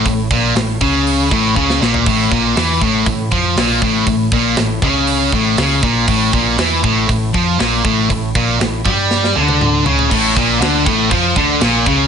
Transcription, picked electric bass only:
X:1
M:4/4
L:1/8
Q:1/4=119
K:none
V:1 name="Picked electric bass" clef=bass
A,,, _B,,, A,,, ^C,,2 A,,, C,, B,,, | A,,, _B,,, E,, A,,, A,,, F,, B,,, A,,, | A,,, _B,,, A,,, ^C,,2 A,,, C,, B,,, | A,,, _B,,, E,, A,,, A,,, F,, B,,, A,,, |
A,,, _B,,, A,,, G,,2 D,,2 ^C,, | A,,, _B,,, D,, A,,, F,, D,, B,,, ^C,, |]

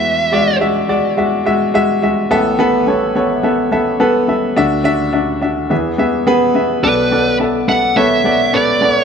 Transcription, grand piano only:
X:1
M:4/4
L:1/8
Q:"Swing 16ths" 1/4=106
K:Bdor
V:1 name="Grand piano"
[G,Fe] [G,Fd] [G,Fe] [G,Fd] [G,Fe] [G,Fe] [G,Fe] [G,Fe] | [B,Ae] [B,AB] [B,Ac] [B,Ac] [B,Ae] [B,Ae] [B,AB] [B,Ae] | [DFe] [DFe] [DFe] [DFe] [B,Ge] [B,Ge] [B,GB] [B,Ge] | [B,Ad] [B,Ad] [B,Ae] [B,Ae] [B,Ac] [B,Ad] [B,AB] [B,Ad] |]
V:2 name="Grand piano" clef=bass
[E,,E,]6- [E,,E,] z | [A,,,A,,]8 | [D,,D,]4 [E,,E,]4 | [B,,,B,,]8 |]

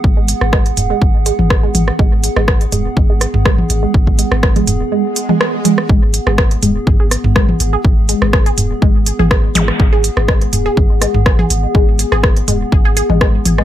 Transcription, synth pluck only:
X:1
M:4/4
L:1/16
Q:"Swing 16ths" 1/4=123
K:G#m
V:1 name="Synth pluck" clef=bass
z G, z2 G, z2 G, z2 G, z2 G, z2 | G, z2 G, z2 G, z2 G, z2 G, z2 G, | z2 G, z2 G, z2 G, z2 G, z2 G, z | G, z2 G z2 G, z2 G z2 G, z2 G |
z2 G, z2 G z2 G, z2 G z2 G, z | z G z2 G, z2 G z2 G, z2 G z2 | G, z2 G z2 G, z2 G G G, G, z2 G, |]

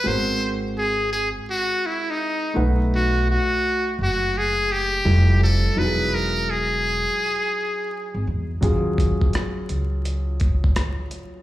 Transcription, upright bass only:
X:1
M:4/4
L:1/16
Q:"Swing 16ths" 1/4=84
K:Ebphr
V:1 name="Upright bass" clef=bass
A,,,6- A,,, z6 z =B,,,2- | =B,,,3 z3 ^F,,,6 =F,,,4 | =E,,,6- E,,, z6 ^G,,, =E,,2 | E,,3 z3 D,,6- D,, z3 |]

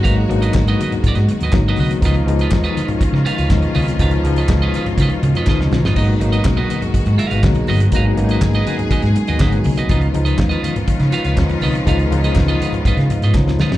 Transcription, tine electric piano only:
X:1
M:4/4
L:1/8
Q:1/4=122
K:C#mix
V:1 name="Tine electric piano"
z8 | z8 | z8 | z8 |
z8 | z8 | z3 f e d c z |]
V:2 name="Tine electric piano"
[F,A,B,D] [F,A,B,=D^D]3 z2 [F,A,B,D] z | [E,G,B,D] [E,G,B,D]3 z2 [E,G,B,D] z | [E,G,B,D] [E,G,B,D]3 z2 [E,G,B,D] z | [F,A,B,D] [F,A,B,D]3 z2 [F,A,B,D] z |
[F,A,B,D] [F,A,B,CD]3 z2 [F,A,B,D] z | [E,G,B,D] [E,G,B,D]3 z2 [E,G,B,D] z | [E,G,B,D] [=E,^E,G,B,D]3 z2 [E,G,B,D] z |]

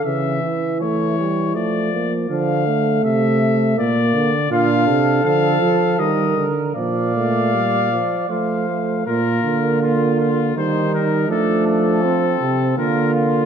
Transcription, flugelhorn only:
X:1
M:3/4
L:1/8
Q:1/4=81
K:Dm
V:1 name="Flugelhorn"
z6 | z6 | [K:Bb] F A3 B2 | d4 c2 |
F2 F2 E2 | D2 C2 F2 |]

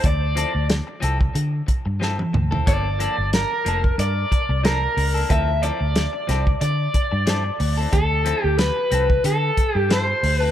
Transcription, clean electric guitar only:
X:1
M:4/4
L:1/16
Q:"Swing 16ths" 1/4=91
K:Dm
V:1 name="Clean electric guitar"
z2 [F,CEA] z3 [F,CEA] z4 z [F,CEA] z2 [CEA] | [F,B,DA] z [F,B,DA] z3 [F,B,DA] z4 z [F,B,DA] z2 [B,DA] | [F,CEA] z [F,CEA] z3 [F,CEA] z4 z [F,CEA] z2 [CEA] | z2 [F,CEA] z3 [F,CEA] z4 z [F,CEA] z2 [CEA] |]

